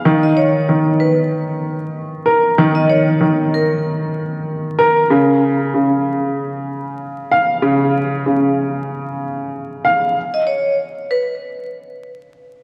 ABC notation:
X:1
M:4/4
L:1/16
Q:"Swing 16ths" 1/4=95
K:Dbmix
V:1 name="Vibraphone"
z e d2 z2 c z8 z | z e d2 z2 B z8 z | z16 | z16 |
z e d2 z2 c z8 z |]
V:2 name="Upright piano" clef=bass
E,4 E,8- E,2 B2 | E,4 E,8- E,2 B2 | D,4 D,8- D,2 f2 | D,4 D,8- D,2 f2 |
z16 |]